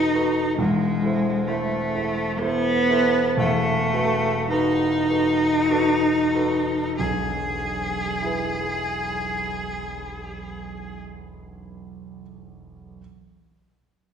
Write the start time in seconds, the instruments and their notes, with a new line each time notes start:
Already playing: cello D#4, grand piano F#4 A4 B4
0.15 grand piano F#4 A4 B4
0.58 grand piano E1 E2, cello G#3
1.03 grand piano E4 A4 C5
1.47 cello A3, grand piano E4 A4 C5
1.95 grand piano E4 A4 C5
2.40 cello B3, grand piano E4 A4 C5
2.90 grand piano E4 A4 C5
3.37 grand piano E1 E2, cello A3
3.93 grand piano F#4 A4 B4
4.50 cello D#4, grand piano F#4 A4 B4
5.09 grand piano F#4 A4 B4
5.70 grand piano F#4 A4 B4
6.35 grand piano F#4 A4 B4
6.98 grand piano E1 B1, cello G#4
8.22 grand piano E4 G#4 B4